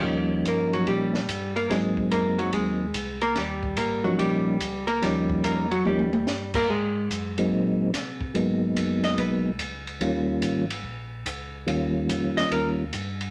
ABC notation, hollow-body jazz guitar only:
X:1
M:4/4
L:1/8
Q:"Swing" 1/4=144
K:Ebmix
V:1 name="Hollow-body jazz guitar"
z2 [B,B] [_G,_G] [=G,=G]3 [B,B] | [A,A]2 [B,B] [_G,_G] [A,A]3 [B,B] | [G,G]2 [B,B] [_G,_G] [=G,=G]3 [B,B] | [G,G]2 [B,B] [_G,_G] [=G,=G]3 [B,B] |
[A,A]3 z4 z | z3 e _c z3 | z8 | z3 e B z3 |]